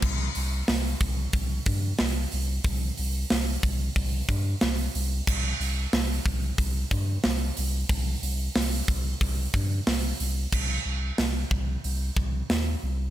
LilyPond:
<<
  \new Staff \with { instrumentName = "Sub bass" } { \clef bass \time 4/4 \key c \minor \tempo 4 = 92 c,8 c,8 c,8 c,8 c,8 g,8 c,8 c,8 | c,8 c,8 c,8 c,8 c,8 g,8 c,8 c,8 | c,8 c,8 c,8 c,8 c,8 g,8 c,8 c,8 | c,8 c,8 c,8 c,8 c,8 g,8 c,8 c,8 |
c,8 c,8 c,8 c,8 c,8 c,8 ees,8 c,8 | }
  \new DrumStaff \with { instrumentName = "Drums" } \drummode { \time 4/4 <cymc bd>8 hho8 <hho sn>8 <hho bd>8 <hho bd>8 <hho bd>8 <hho sn>8 hho8 | <hho bd>8 hho8 <hho sn>8 <hho bd>8 <hho bd>8 <hho bd>8 <hho sn>8 hho8 | <cymc bd>8 hho8 <hho sn>8 <hho bd>8 <hho bd>8 <hho bd>8 <hho sn>8 hho8 | <hho bd>8 hho8 <hho sn>8 <hho bd>8 <hho bd>8 <hho bd>8 <hho sn>8 hho8 |
<cymc bd>4 <hho sn>8 bd8 hho8 bd8 <hho sn>4 | }
>>